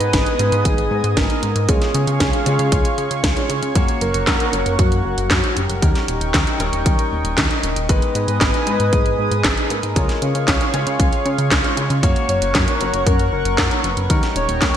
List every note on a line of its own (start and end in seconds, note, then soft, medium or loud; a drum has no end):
0.00 0.12 G#2 medium
0.00 0.36 G#3 medium
0.00 0.36 B3 medium
0.00 1.67 B3 medium
0.00 0.36 D#4 medium
0.00 0.36 B4 loud
0.00 0.67 B4 loud
0.00 1.65 D#5 medium
0.00 1.67 G#5 medium
0.00 1.67 D#6 medium
0.00 closed hi-hat soft
0.13 0.25 G#1 medium
0.13 kick medium
0.13 snare loud
0.13 closed hi-hat medium
0.26 closed hi-hat soft
0.39 0.51 G#2 medium
0.39 1.66 G#3 medium
0.39 1.66 B3 medium
0.39 1.66 D#4 medium
0.39 1.66 G#4 medium
0.39 closed hi-hat medium
0.52 0.64 G#2 loud
0.52 closed hi-hat soft
0.65 0.88 G#1 loud
0.65 1.19 G#4 loud
0.65 kick loud
0.65 closed hi-hat loud
0.78 closed hi-hat soft
0.91 1.03 G#2 medium
1.04 1.16 G#2 medium
1.04 closed hi-hat soft
1.17 1.28 G#1 medium
1.17 1.68 A#4 loud
1.17 kick loud
1.17 snare loud
1.17 closed hi-hat medium
1.30 closed hi-hat soft
1.43 1.54 G#2 medium
1.43 closed hi-hat medium
1.56 1.67 G#2 medium
1.56 closed hi-hat soft
1.69 1.80 C#2 loud
1.69 2.43 G#3 medium
1.69 2.43 C#4 medium
1.69 2.43 F4 medium
1.69 3.73 G#4 medium
1.69 3.20 G#4 loud
1.69 2.43 C#5 medium
1.69 5.78 C#5 medium
1.69 3.73 F5 medium
1.69 5.78 C#6 medium
1.69 kick loud
1.69 closed hi-hat medium
1.82 snare soft
1.82 closed hi-hat soft
1.95 2.06 C#3 loud
1.95 closed hi-hat medium
2.07 2.19 C#3 medium
2.07 closed hi-hat soft
2.20 2.32 C#2 medium
2.20 kick medium
2.20 snare loud
2.20 closed hi-hat medium
2.33 closed hi-hat soft
2.46 2.58 C#3 medium
2.46 3.34 G#3 medium
2.46 3.34 C#4 medium
2.46 3.34 F4 medium
2.46 3.34 C#5 loud
2.46 closed hi-hat medium
2.59 2.71 C#3 loud
2.59 closed hi-hat soft
2.72 2.84 C#2 medium
2.72 kick loud
2.72 closed hi-hat loud
2.85 closed hi-hat soft
2.98 3.09 C#3 medium
2.98 closed hi-hat soft
3.11 3.22 C#3 medium
3.11 closed hi-hat soft
3.24 3.35 C#2 loud
3.24 kick loud
3.24 snare loud
3.24 closed hi-hat loud
3.37 3.72 G#3 medium
3.37 3.72 C#4 medium
3.37 3.72 F4 medium
3.37 3.72 C#5 medium
3.37 closed hi-hat soft
3.50 3.61 C#3 medium
3.50 closed hi-hat medium
3.63 3.74 C#3 medium
3.63 closed hi-hat soft
3.75 3.87 F#2 medium
3.75 4.50 A#3 loud
3.75 4.50 C#4 medium
3.75 4.50 F#4 medium
3.75 7.85 A#4 medium
3.75 4.50 C#5 loud
3.75 5.80 F#5 medium
3.75 kick loud
3.75 closed hi-hat medium
3.88 closed hi-hat soft
4.01 4.13 F#1 loud
4.01 4.81 A#4 loud
4.01 closed hi-hat medium
4.14 4.26 F#1 medium
4.14 closed hi-hat soft
4.27 4.39 F#2 medium
4.27 kick loud
4.27 snare loud
4.27 clap medium
4.27 closed hi-hat medium
4.40 closed hi-hat soft
4.53 4.65 F#1 medium
4.53 5.79 A#3 medium
4.53 5.79 C#4 medium
4.53 5.79 F#4 medium
4.53 5.79 C#5 medium
4.53 closed hi-hat medium
4.66 4.78 F#1 loud
4.66 closed hi-hat soft
4.79 5.02 F#2 loud
4.79 5.04 F#4 loud
4.79 kick loud
4.79 closed hi-hat loud
4.92 closed hi-hat soft
5.05 5.16 F#1 medium
5.05 5.58 F#4 medium
5.18 5.29 F#1 medium
5.18 closed hi-hat soft
5.31 5.42 F#2 loud
5.31 kick loud
5.31 snare loud
5.31 clap loud
5.31 closed hi-hat medium
5.44 closed hi-hat soft
5.57 5.68 F#1 medium
5.57 6.34 G4 medium
5.57 closed hi-hat medium
5.70 5.81 F#1 medium
5.70 closed hi-hat soft
5.82 5.94 D#2 medium
5.82 6.57 G3 medium
5.82 6.57 C#4 medium
5.82 6.57 D#4 medium
5.82 6.57 A#4 medium
5.82 9.92 D#5 medium
5.82 7.87 G5 medium
5.82 7.87 C#6 medium
5.82 kick loud
5.82 closed hi-hat medium
5.95 snare soft
5.95 closed hi-hat soft
6.08 6.20 D#1 medium
6.08 closed hi-hat medium
6.21 6.33 D#1 medium
6.21 closed hi-hat soft
6.34 6.46 D#2 medium
6.34 kick loud
6.34 snare loud
6.34 clap medium
6.34 closed hi-hat medium
6.47 closed hi-hat soft
6.60 6.72 D#1 loud
6.60 7.86 G3 medium
6.60 7.86 C#4 medium
6.60 7.86 D#4 medium
6.60 7.86 A#4 loud
6.60 closed hi-hat medium
6.73 6.84 D#1 loud
6.73 closed hi-hat soft
6.86 6.97 D#2 medium
6.86 kick loud
6.86 closed hi-hat medium
6.99 closed hi-hat soft
7.12 7.23 D#1 medium
7.25 7.36 D#1 medium
7.25 closed hi-hat soft
7.38 7.49 D#2 medium
7.38 kick loud
7.38 snare loud
7.38 clap loud
7.38 closed hi-hat loud
7.51 closed hi-hat soft
7.63 7.75 D#1 medium
7.63 closed hi-hat medium
7.76 7.88 D#1 loud
7.76 closed hi-hat soft
7.89 8.01 G#1 medium
7.89 8.64 G#3 medium
7.89 8.64 B3 medium
7.89 8.64 D#4 medium
7.89 9.94 B4 medium
7.89 8.64 B4 loud
7.89 9.94 G#5 medium
7.89 9.94 D#6 medium
7.89 kick loud
7.89 closed hi-hat medium
8.02 closed hi-hat soft
8.15 8.27 G#2 loud
8.15 8.94 B4 loud
8.15 closed hi-hat medium
8.28 8.40 G#2 medium
8.28 closed hi-hat soft
8.41 8.53 G#1 medium
8.41 kick loud
8.41 snare loud
8.41 clap medium
8.41 closed hi-hat medium
8.54 closed hi-hat soft
8.67 8.78 G#2 medium
8.67 9.93 G#3 medium
8.67 9.93 B3 medium
8.67 9.93 D#4 medium
8.67 9.93 B4 medium
8.67 closed hi-hat medium
8.80 8.91 G#2 loud
8.80 closed hi-hat soft
8.93 9.16 G#1 loud
8.93 9.18 G#4 loud
8.93 kick loud
8.93 closed hi-hat medium
9.06 closed hi-hat soft
9.19 9.30 G#2 medium
9.19 9.72 G#4 medium
9.31 9.43 G#2 medium
9.31 closed hi-hat soft
9.44 9.56 G#1 medium
9.44 kick loud
9.44 snare loud
9.44 clap loud
9.44 closed hi-hat medium
9.57 closed hi-hat soft
9.70 9.82 G#2 medium
9.70 10.48 A#4 medium
9.70 closed hi-hat medium
9.83 9.95 G#2 medium
9.83 closed hi-hat soft
9.96 10.08 C#2 loud
9.96 10.71 G#3 medium
9.96 10.71 C#4 medium
9.96 10.71 F4 medium
9.96 12.01 G#4 medium
9.96 10.71 C#5 medium
9.96 14.06 C#5 medium
9.96 12.01 F5 medium
9.96 14.77 C#6 medium
9.96 kick loud
9.96 closed hi-hat medium
10.09 snare soft
10.09 closed hi-hat soft
10.22 10.34 C#3 medium
10.22 closed hi-hat medium
10.35 10.47 C#3 medium
10.35 closed hi-hat soft
10.48 10.59 C#2 medium
10.48 kick loud
10.48 snare loud
10.48 clap medium
10.48 closed hi-hat medium
10.61 closed hi-hat soft
10.74 10.85 C#3 medium
10.74 11.62 G#3 medium
10.74 11.62 C#4 medium
10.74 11.62 F4 medium
10.74 11.62 C#5 loud
10.74 closed hi-hat medium
10.87 10.98 C#3 loud
10.87 closed hi-hat soft
11.00 11.11 C#2 medium
11.00 kick loud
11.00 closed hi-hat medium
11.13 closed hi-hat soft
11.26 11.37 C#3 medium
11.26 closed hi-hat soft
11.38 11.50 C#3 medium
11.38 closed hi-hat soft
11.51 11.63 C#2 medium
11.51 kick loud
11.51 snare loud
11.51 clap loud
11.51 closed hi-hat medium
11.64 12.00 G#3 medium
11.64 12.00 C#4 medium
11.64 12.00 F4 medium
11.64 12.00 C#5 medium
11.64 closed hi-hat soft
11.77 11.89 C#3 medium
11.77 closed hi-hat medium
11.90 12.02 C#3 loud
11.90 closed hi-hat soft
12.03 12.15 F#2 medium
12.03 12.78 A#3 medium
12.03 12.78 C#4 medium
12.03 12.78 F#4 medium
12.03 14.08 A#4 medium
12.03 12.78 C#5 loud
12.03 14.08 F#5 medium
12.03 kick loud
12.03 closed hi-hat medium
12.16 closed hi-hat soft
12.29 12.41 F#1 loud
12.29 13.08 C#5 loud
12.29 closed hi-hat medium
12.42 12.53 F#1 medium
12.42 closed hi-hat soft
12.55 12.66 F#2 medium
12.55 kick loud
12.55 snare loud
12.55 clap medium
12.55 closed hi-hat medium
12.68 closed hi-hat soft
12.81 12.92 F#1 medium
12.81 14.07 A#3 medium
12.81 14.07 C#4 medium
12.81 14.07 F#4 medium
12.81 14.07 C#5 medium
12.81 closed hi-hat medium
12.94 13.05 F#1 loud
12.94 closed hi-hat soft
13.07 13.30 F#2 loud
13.07 13.32 A#4 loud
13.07 kick loud
13.07 closed hi-hat medium
13.19 closed hi-hat soft
13.32 13.44 F#1 medium
13.32 13.86 A#4 medium
13.45 13.57 F#1 medium
13.45 closed hi-hat soft
13.58 13.70 F#2 loud
13.58 kick loud
13.58 snare loud
13.58 clap loud
13.58 closed hi-hat medium
13.71 closed hi-hat soft
13.84 13.96 F#1 medium
13.84 14.10 B4 medium
13.84 closed hi-hat medium
13.97 14.09 F#1 medium
13.97 closed hi-hat soft
14.10 14.22 D#2 loud
14.10 14.77 G3 medium
14.10 14.77 C#4 medium
14.10 14.77 D#4 medium
14.10 14.77 A#4 medium
14.10 14.77 D#5 medium
14.10 14.77 G5 medium
14.10 kick loud
14.10 closed hi-hat medium
14.23 snare soft
14.23 closed hi-hat soft
14.36 14.47 D#1 medium
14.36 14.77 C#5 loud
14.36 closed hi-hat medium
14.49 14.60 D#1 medium
14.49 closed hi-hat soft
14.62 14.73 D#2 medium
14.62 kick loud
14.62 snare loud
14.62 clap medium
14.62 closed hi-hat medium